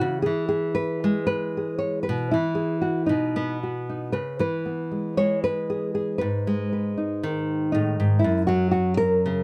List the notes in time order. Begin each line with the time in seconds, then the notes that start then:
Already playing: E3 F#4
0.01 C#3
0.22 E3 G#4
0.49 G#4
0.75 B4
1.04 G#3
1.27 B4
1.57 G#4
1.78 C#5
2.03 B4
2.09 B2
2.31 E3 E4
2.55 G#4
2.82 F#4
3.06 B2 D#4
3.36 B3
3.63 F#4
3.90 D#4
4.12 C#3 B4
4.39 E3 B4
4.66 B3
4.91 G#3
5.17 G#3 C#5
5.44 B4
5.70 G#4
5.95 G#4
6.18 G#2 B4
6.47 G#3
6.72 B4
6.98 D#4
7.23 D#3
7.72 A2 D#4
8.00 G#2
8.19 E4
8.24 F#2
8.47 F#3 F#4
8.71 F#4
8.97 A#4
9.26 C#3